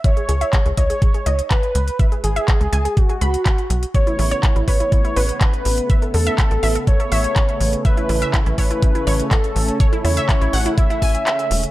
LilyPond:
<<
  \new Staff \with { instrumentName = "Soft synth lead" } { \time 4/4 \key a \lydian \tempo 4 = 123 cis''4. cis''4. b'4~ | b'8 gis'4. fis'2 | cis''4. cis''4. b'4~ | b'8 a'4. cis''2 |
b'4. b'4. a'4~ | a'8 cis''4. e''2 | }
  \new Staff \with { instrumentName = "Synth pluck" } { \time 4/4 \key a \lydian e''16 gis'16 gis'16 e''16 gis'16 gis'16 dis''16 gis'16 gis'16 gis'16 dis''4~ dis''16 r16 | e''16 gis'16 gis'16 e''16 gis'16 gis'16 gis''16 gis'16 gis'16 gis'16 b''4~ b''16 r16 | cis''16 e'16 e'16 cis''16 e'16 e'16 b'16 e'16 e'16 e'16 b'4~ b'16 r16 | e''16 a'16 a'16 e''16 a'16 a'16 e''16 a'16 a'16 a'16 e''4~ e''16 r16 |
e''16 e'16 e'16 e''16 e'16 e'16 cis''16 e'16 e'16 e'16 cis''4~ cis''16 r16 | cis''16 e'16 e'16 e''16 e'16 e'16 fis''16 e'16 e'16 e'16 gis''4~ gis''16 r16 | }
  \new Staff \with { instrumentName = "Supersaw synth" } { \time 4/4 \key a \lydian << { r1 | r1 | b1~ | b1 |
cis'1~ | cis'1 | } \\ { r1 | r1 | <cis a>1~ | <cis a>1~ |
<cis a>1~ | <cis a>1 | } >> }
  \new Staff \with { instrumentName = "Analog synth bass" } { \clef bass \time 4/4 \key a \lydian r8 cis,16 r8 cis,16 cis,16 r8. cis,16 r8. cis,16 r16 | r8 gis,,16 r8 cis,16 cis,16 r8. cis,16 r8. b,,16 r16 | r8 a,,16 r8 a,,16 a,,16 r8. a,,16 r8. a,,16 r16 | r8 e,16 r8 a,,16 a,,16 r8. a,,16 r8. a,,16 r16 |
r8 a,,16 r8 a,,16 a,,16 r8. a,,16 r8. a,,16 r16 | r8 e,16 r8 a,,16 a,,16 r8. a,,16 r8. e,,16 r16 | }
  \new DrumStaff \with { instrumentName = "Drums" } \drummode { \time 4/4 <hh bd>16 hh16 hh16 hh16 <hc hh bd>16 hh16 <hh bd>16 hh16 <hh bd>16 hh16 hh16 hh16 <hc hh bd>16 hh16 hh16 hh16 | <hh bd>16 hh16 hh16 hh16 <hc hh bd>16 hh16 hh16 hh16 <hh bd>16 hh16 hh16 hh16 <hc hh bd>16 hh16 hh16 hh16 | <hh bd>16 hh16 hho16 hh16 <hc hh bd>16 hh16 <hho bd>16 hh16 <hh bd>16 hh16 hho16 hh16 <hc hh bd>16 hh16 hho16 hh16 | <hh bd>16 hh16 hho16 hh16 <hc hh bd>16 hh16 hho16 hh16 <hh bd>16 hh16 hho16 hh16 <hc hh bd>16 hh16 hho16 hh16 |
<hh bd>16 hh16 hho16 hh16 <hc hh bd>16 hh16 <hho bd>16 hh16 <hh bd>16 hh16 hho16 hh16 <hc hh bd>16 hh16 hho16 hh16 | <hh bd>16 hh16 hho16 hh16 <hc hh bd>16 hh16 hho16 hh16 <hh bd>16 hh16 <hho bd>16 hh16 <hc hh>16 hh16 hho16 hh16 | }
>>